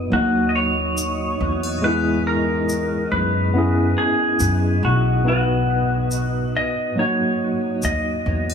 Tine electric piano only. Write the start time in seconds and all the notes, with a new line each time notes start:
Already playing: B3 D#4 F#4 B4
0.10 F#3 A#3 D#4
0.15 F#4
1.82 G#3 B3 E4
1.87 G#4
3.53 B3 C#4 E4
3.58 G#4
5.24 B3 D#4 F#4
5.29 B4
6.95 F#3 A#3 D#4
7.00 F#4